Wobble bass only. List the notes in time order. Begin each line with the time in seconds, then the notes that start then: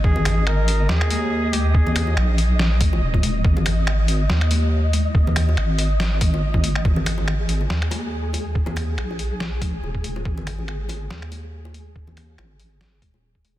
0.04 G#1
0.89 D#2
2.17 A#1
3.02 D#1
3.45 G#1
4.30 D#2
5.57 G#1
6.21 G#1
6.85 G#1
7.70 D#2
8.98 A#1
9.83 D#1
10.25 G#1
11.10 D#2
12.38 G#1
13.02 D#1